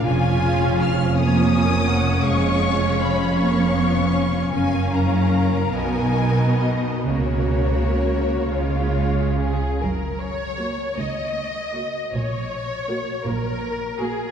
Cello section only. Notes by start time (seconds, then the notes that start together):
0.05 F2
2.25 F2
4.52 F#2
5.75 B2
7.07 C#3
8.48 C#3
9.82 F#2
10.98 C#2
12.13 A#2
13.26 A#2